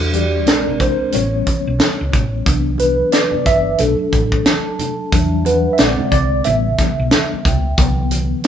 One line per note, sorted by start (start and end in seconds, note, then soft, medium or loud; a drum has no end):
0.00 0.48 E2 medium
0.00 0.44 G3 soft
0.00 0.44 D4 soft
0.00 0.44 F#4 medium
0.00 0.11 A4 medium
0.13 0.49 G4 medium
0.13 0.76 D5 medium
0.13 closed hi-hat medium
0.13 high conga medium
0.46 0.80 A#1 medium
0.46 1.10 G#3 medium
0.46 1.10 C4 medium
0.46 1.10 D4 medium
0.46 0.82 A#4 medium
0.46 snare loud
0.46 closed hi-hat medium
0.67 low conga medium
0.80 1.07 C2 medium
0.80 1.12 C5 medium
0.80 kick medium
0.80 closed hi-hat medium
0.80 muted conga soft
0.80 high conga medium
1.12 1.42 A1 loud
1.12 1.59 G3 medium
1.12 1.60 B3 soft
1.12 1.60 C#4 medium
1.12 2.10 C#5 medium
1.12 closed hi-hat medium
1.12 muted conga soft
1.12 low conga medium
1.47 muted fingered electric bass stroke soft
1.47 kick medium
1.47 closed hi-hat medium
1.47 muted conga soft
1.47 high conga medium
1.67 1.78 B1 medium
1.79 snare loud
1.79 closed hi-hat medium
1.79 high conga medium
2.01 2.12 C#2 medium
2.12 2.41 A1 medium
2.12 kick medium
2.12 closed hi-hat medium
2.12 muted conga soft
2.12 low conga medium
2.45 3.01 C2 loud
2.45 2.92 E3 soft
2.45 2.93 F#3 soft
2.45 2.93 B3 soft
2.45 2.93 D4 medium
2.45 kick loud
2.45 closed hi-hat medium
2.78 3.14 B4 medium
2.78 closed hi-hat medium
2.78 high conga medium
3.12 3.44 D5 medium
3.12 snare loud
3.12 closed hi-hat loud
3.31 muted fingered electric bass stroke soft
3.31 low conga medium
3.45 3.73 G1 medium
3.45 3.81 E5 loud
3.45 kick medium
3.45 closed hi-hat medium
3.45 muted conga soft
3.45 high conga medium
3.78 3.96 B1 medium
3.78 4.75 F#3 medium
3.78 4.75 A3 soft
3.78 4.76 D4 medium
3.78 4.75 A4 medium
3.78 closed hi-hat medium
3.78 low conga medium
3.99 muted fingered electric bass stroke soft
4.12 4.40 A1 medium
4.12 kick medium
4.12 closed hi-hat medium
4.12 muted conga soft
4.12 high conga medium
4.32 kick medium
4.45 5.42 A5 medium
4.45 snare loud
4.45 closed hi-hat medium
4.45 high conga medium
4.79 closed hi-hat medium
4.79 low conga medium
5.12 5.67 E2 loud
5.12 5.75 F#3 medium
5.12 5.75 G3 soft
5.12 5.76 D4 medium
5.12 6.08 E5 medium
5.12 kick loud
5.12 closed hi-hat medium
5.45 5.74 B4 medium
5.45 6.08 F#5 medium
5.45 closed hi-hat medium
5.45 muted conga soft
5.45 high conga medium
5.73 5.79 E5 medium
5.78 5.95 A#1 medium
5.78 6.25 D3 medium
5.78 6.26 G#3 medium
5.78 6.26 C4 medium
5.78 6.10 D5 loud
5.78 snare loud
5.78 closed hi-hat medium
5.98 muted fingered electric bass stroke soft
5.98 low conga medium
6.12 6.39 C2 medium
6.12 6.46 D5 loud
6.12 kick medium
6.12 closed hi-hat medium
6.12 high conga medium
6.44 6.73 A1 loud
6.44 6.92 C#3 medium
6.44 6.92 G3 soft
6.44 6.93 B3 medium
6.44 7.41 E5 medium
6.44 closed hi-hat medium
6.44 low conga medium
6.78 muted fingered electric bass stroke medium
6.78 kick medium
6.78 snare soft
6.78 closed hi-hat medium
6.78 muted conga soft
6.78 high conga medium
7.00 7.10 B1 medium
7.11 snare loud
7.11 closed hi-hat medium
7.11 muted conga soft
7.11 high conga medium
7.33 muted fingered electric bass stroke soft
7.45 7.72 C#2 loud
7.45 8.07 G5 medium
7.45 kick loud
7.45 closed hi-hat medium
7.45 low conga medium
7.78 8.32 C2 loud
7.78 8.47 D3 medium
7.78 8.47 E3 soft
7.78 8.47 F#3 soft
7.78 8.47 B3 medium
7.78 kick loud
7.78 closed hi-hat medium
7.78 muted conga soft
8.11 closed hi-hat medium
8.11 high conga medium
8.44 closed hi-hat loud